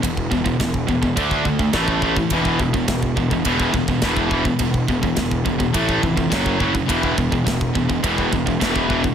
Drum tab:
RD |b---b---b---b---|b---b---b---b---|b---b---b---b---|b---b---b---b---|
SD |----o-------o---|----o-------o---|----o-------o---|----o-------o---|
BD |oooooooooooooooo|oooooooooooooooo|oooooooooooooooo|oooooooooooooooo|